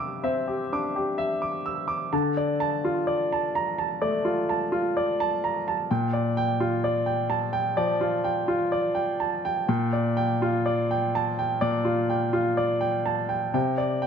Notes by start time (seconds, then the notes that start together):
Already playing: C3 D4 G4 E5 E6
0.00 D6
0.23 C4 E5
0.48 G4
0.72 D4 D6
0.96 G4
1.18 E5
1.42 D6
1.66 E6
1.88 D6
2.13 D3 A5
2.37 D5
2.60 A5
2.85 F4
3.07 D5
3.33 A5
3.55 A#5
3.78 A5
4.02 A3 D5
4.25 F4
4.49 A5
4.72 F4
4.97 D5
5.20 A5
5.44 A#5
5.68 A5
5.91 A#2 G5
6.13 D5
6.37 G5
6.60 F4
6.84 D5
7.06 G5
7.30 A5
7.53 G5
7.77 F3 D5
8.01 F4
8.24 G5
8.48 F4
8.72 D5
8.95 G5
9.20 A5
9.45 G5
9.68 A#2 G5
9.93 D5
10.17 G5
10.42 F4
10.66 D5
10.91 G5
11.15 A5
11.39 G5
11.61 A#2 D5
11.85 F4
12.10 G5
12.33 F4
12.57 D5
12.81 G5
13.06 A5
13.29 G5
13.54 C3 G5
13.78 D5
14.02 G5